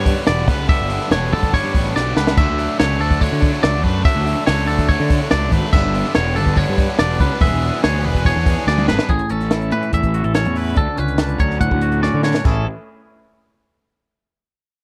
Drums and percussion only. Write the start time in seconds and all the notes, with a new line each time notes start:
0.06 kick, open hi-hat
0.17 snare
0.26 snare, open hi-hat
0.48 kick, open hi-hat
0.69 kick, open hi-hat
0.90 open hi-hat
1.01 snare
1.11 snare, open hi-hat
1.32 open hi-hat
1.43 kick
1.53 kick, open hi-hat
1.74 kick, open hi-hat
1.86 snare
1.96 snare
2.17 snare
2.27 snare
2.37 kick, crash
2.59 open hi-hat
2.80 snare, open hi-hat
3.00 open hi-hat
3.11 kick
3.21 kick, open hi-hat
3.42 kick, open hi-hat
3.53 snare
3.63 snare, open hi-hat
3.84 kick, open hi-hat
4.05 kick, open hi-hat
4.26 open hi-hat
4.47 snare, open hi-hat
4.69 open hi-hat
4.79 kick
4.89 kick, open hi-hat
5.10 kick, open hi-hat
5.21 snare
5.31 snare, open hi-hat
5.52 kick, open hi-hat
5.73 kick, crash
5.94 open hi-hat
6.05 snare
6.15 snare, open hi-hat
6.36 open hi-hat
6.46 kick
6.56 kick, open hi-hat
6.78 kick, open hi-hat
6.89 snare
6.98 snare, open hi-hat
7.20 kick, open hi-hat
7.40 kick, open hi-hat
7.62 open hi-hat
7.73 snare
7.84 snare, open hi-hat
8.04 open hi-hat
8.15 kick
8.25 kick, open hi-hat
8.46 kick, open hi-hat
8.57 snare
8.68 snare
8.78 mid tom
8.88 snare
8.99 snare
9.09 kick, closed hi-hat
9.19 closed hi-hat
9.29 closed hi-hat
9.41 snare, closed hi-hat
9.51 snare, closed hi-hat
9.62 closed hi-hat
9.72 closed hi-hat
9.83 closed hi-hat
9.93 kick, closed hi-hat
10.03 kick, closed hi-hat
10.14 closed hi-hat
10.24 closed hi-hat
10.35 snare, closed hi-hat
10.45 closed hi-hat
10.56 snare, open hi-hat
10.77 kick, closed hi-hat
10.97 closed hi-hat
11.08 closed hi-hat
11.18 snare, closed hi-hat
11.29 closed hi-hat
11.39 kick, closed hi-hat
11.50 snare
11.61 kick, closed hi-hat
11.71 kick
11.81 closed hi-hat
11.92 closed hi-hat
12.03 snare
12.23 snare
12.34 snare
12.45 kick, crash